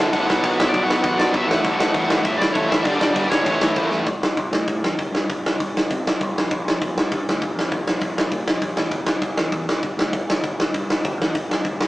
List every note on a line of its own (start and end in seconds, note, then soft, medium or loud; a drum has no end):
0.00 0.11 D2 medium
0.00 0.26 D2 medium
0.00 0.11 A2 medium
0.00 0.27 A2 loud
0.00 0.12 D3 medium
0.00 0.28 D3 medium
0.12 0.25 D1 loud
0.12 0.26 D2 medium
0.12 0.26 A2 medium
0.12 0.27 D3 loud
0.12 0.43 F#5 medium
0.12 kick loud
0.12 crash medium
0.27 0.39 B1 medium
0.27 0.43 B2 medium
0.27 0.42 F#3 loud
0.27 0.41 B3 loud
0.27 snare loud
0.42 0.55 F#1 loud
0.42 0.57 B2 medium
0.42 0.57 F#3 medium
0.42 0.58 B3 loud
0.42 0.49 F#5 loud
0.42 kick loud
0.42 crash medium
0.57 0.69 B1 medium
0.57 0.74 B2 medium
0.57 0.73 F#3 medium
0.57 0.72 B3 medium
0.57 0.69 E5 loud
0.57 snare loud
0.69 0.83 D5 loud
0.73 0.85 B1 loud
0.73 0.88 B2 medium
0.73 0.89 F#3 medium
0.73 0.90 B3 loud
0.73 kick loud
0.73 crash medium
0.84 0.99 B1 medium
0.84 1.02 F#5 loud
0.89 1.04 B2 medium
0.89 1.03 F#3 medium
0.89 1.02 B3 loud
0.89 snare loud
1.03 1.16 A1 medium
1.03 1.17 B2 medium
1.03 1.17 F#3 loud
1.03 1.18 B3 loud
1.03 1.19 F#5 loud
1.03 kick loud
1.03 crash medium
1.18 1.30 B1 medium
1.18 1.33 B2 medium
1.18 1.33 F#3 medium
1.18 1.32 B3 loud
1.18 1.34 D5 loud
1.18 snare loud
1.33 1.46 B1 medium
1.33 1.48 B2 medium
1.33 1.48 F#3 medium
1.33 1.48 B3 loud
1.33 1.48 E5 loud
1.33 kick loud
1.33 crash medium
1.47 1.60 A1 medium
1.47 1.64 A2 loud
1.47 1.64 E3 loud
1.47 1.63 A3 loud
1.47 1.78 F#5 loud
1.47 snare loud
1.64 1.76 A1 loud
1.64 1.78 A2 medium
1.64 1.79 E3 loud
1.64 1.79 A3 loud
1.64 kick loud
1.64 crash medium
1.77 1.90 A1 medium
1.77 1.94 A2 medium
1.77 1.93 E3 medium
1.77 1.93 A3 medium
1.77 2.21 F#5 loud
1.77 snare loud
1.94 2.07 A1 medium
1.94 2.08 A2 medium
1.94 2.09 E3 medium
1.94 2.09 A3 medium
1.94 kick loud
1.94 crash medium
2.07 2.20 A1 loud
2.07 2.24 A2 medium
2.07 2.23 E3 medium
2.07 2.23 A3 medium
2.07 snare loud
2.24 2.37 E1 medium
2.24 2.38 A2 medium
2.24 2.38 E3 medium
2.24 2.39 A3 loud
2.24 2.37 E5 medium
2.24 kick loud
2.24 crash medium
2.38 2.51 A1 loud
2.38 2.55 A2 medium
2.38 2.54 E3 medium
2.38 2.54 A3 medium
2.38 2.52 D5 medium
2.42 snare loud
2.52 2.67 A1 loud
2.52 2.70 E3 medium
2.52 2.71 A3 medium
2.52 2.68 C#5 medium
2.52 kick loud
2.52 crash medium
2.56 2.69 A2 medium
2.69 2.83 A1 medium
2.69 2.84 A2 medium
2.69 2.85 E3 medium
2.69 2.85 A3 loud
2.69 2.83 E5 medium
2.69 snare loud
2.83 2.97 G1 loud
2.83 3.01 G2 loud
2.83 3.00 D3 loud
2.83 2.99 G3 loud
2.83 3.30 D5 loud
2.83 kick loud
2.83 crash medium
3.00 3.12 G1 medium
3.00 3.13 G2 medium
3.00 3.14 D3 medium
3.00 3.14 G3 medium
3.00 snare loud
3.14 3.28 G1 medium
3.14 3.30 G2 medium
3.14 3.29 D3 medium
3.14 3.29 G3 medium
3.14 kick loud
3.14 crash medium
3.30 3.43 G1 medium
3.30 3.44 G2 medium
3.30 3.45 D3 medium
3.30 3.45 G3 loud
3.30 3.87 C#5 medium
3.30 snare loud
3.45 3.58 A1 medium
3.45 3.60 A2 loud
3.45 3.59 E3 loud
3.45 3.59 A3 loud
3.45 kick loud
3.45 crash medium
3.60 3.72 A1 medium
3.60 3.74 A2 medium
3.60 3.75 E3 medium
3.60 3.76 A3 loud
3.60 snare loud
3.75 3.88 A1 loud
3.75 3.90 A2 medium
3.75 3.89 E3 medium
3.75 3.88 A3 loud
3.75 kick loud
3.75 crash medium
3.89 4.03 E2 medium
3.89 4.05 A2 medium
3.89 4.05 E3 medium
3.89 4.05 A3 medium
3.89 snare medium
4.06 4.20 C2 medium
4.06 kick loud
4.06 open hi-hat medium
4.21 4.35 C2 medium
4.21 snare loud
4.37 4.50 C2 medium
4.37 kick loud
4.37 open hi-hat medium
4.51 4.65 A2 medium
4.51 snare loud
4.67 4.80 A2 medium
4.67 kick loud
4.67 open hi-hat medium
4.81 4.95 E2 medium
4.81 snare loud
4.99 5.11 G1 medium
4.99 kick loud
4.99 open hi-hat medium
5.12 5.26 G2 medium
5.12 snare loud
5.30 5.43 C2 medium
5.30 kick loud
5.30 open hi-hat medium
5.44 5.57 C2 medium
5.44 snare loud
5.59 5.73 C2 medium
5.59 kick loud
5.59 open hi-hat medium
5.75 5.88 C2 medium
5.75 snare loud
5.90 6.03 C3 medium
5.90 kick loud
5.90 open hi-hat medium
6.05 6.18 C2 medium
6.05 snare loud
6.21 6.34 C2 medium
6.21 kick loud
6.21 open hi-hat medium
6.35 6.48 A#1 medium
6.35 snare loud
6.51 6.64 A#1 medium
6.51 kick loud
6.51 open hi-hat medium
6.64 6.78 A#1 medium
6.64 snare loud
6.82 6.94 A#1 medium
6.82 kick loud
6.82 open hi-hat medium
6.96 7.09 G2 medium
6.96 snare loud
7.12 7.25 G2 medium
7.12 kick loud
7.12 open hi-hat medium
7.27 7.40 D2 medium
7.27 snare loud
7.42 7.55 F1 loud
7.42 kick loud
7.42 open hi-hat medium
7.55 7.69 F2 medium
7.55 snare loud
7.72 7.85 A#1 medium
7.72 kick loud
7.72 open hi-hat medium
7.87 8.00 A#1 medium
7.87 snare loud
8.01 8.15 A#1 medium
8.01 kick loud
8.01 open hi-hat medium
8.16 8.30 A#1 medium
8.16 snare loud
8.31 8.45 A#2 medium
8.31 kick loud
8.31 open hi-hat medium
8.47 8.60 A#1 medium
8.47 snare loud
8.61 8.75 A#1 medium
8.61 kick loud
8.61 open hi-hat medium
8.77 8.91 A1 medium
8.77 snare loud
8.91 9.05 G1 medium
8.91 kick loud
8.91 open hi-hat medium
9.06 9.20 G1 medium
9.06 snare loud
9.21 9.36 G1 medium
9.21 kick loud
9.21 open hi-hat medium
9.37 9.52 E2 medium
9.37 snare loud
9.52 9.66 E2 medium
9.52 kick loud
9.52 open hi-hat medium
9.68 9.82 B1 medium
9.68 snare loud
9.82 9.96 D1 medium
9.82 kick loud
9.82 open hi-hat medium
9.97 10.11 D2 medium
9.97 snare loud
10.12 10.27 G1 loud
10.12 kick loud
10.12 open hi-hat medium
10.28 10.42 G1 medium
10.28 snare loud
10.43 10.57 G1 medium
10.43 kick loud
10.43 open hi-hat medium
10.57 10.72 G1 medium
10.57 snare loud
10.74 10.88 G2 medium
10.74 kick loud
10.74 open hi-hat medium
10.89 11.03 G1 medium
10.89 snare loud
11.05 11.17 G1 loud
11.05 kick loud
11.05 open hi-hat medium
11.18 11.32 E2 medium
11.18 snare loud
11.35 11.47 D1 loud
11.35 kick loud
11.35 open hi-hat medium
11.48 11.63 D1 medium
11.48 snare loud
11.65 11.77 D1 medium
11.65 kick loud
11.65 open hi-hat medium
11.78 11.88 B1 medium
11.78 snare loud